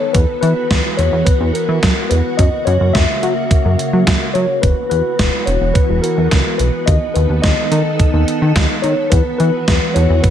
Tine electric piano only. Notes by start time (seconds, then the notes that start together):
Already playing: C#5
0.13 B4
0.41 B4
0.97 C#5
1.25 B4
1.53 A#4
2.09 B4
2.37 D#5
2.65 C#5
2.93 E5
4.34 C#5
4.62 B4
4.90 B4
5.46 C#5
5.74 B4
6.02 A#4
6.58 B4
6.86 D#5
7.14 B4
7.42 D#5
8.82 C#5
9.10 B4
9.38 B4
9.94 C#5
10.22 B4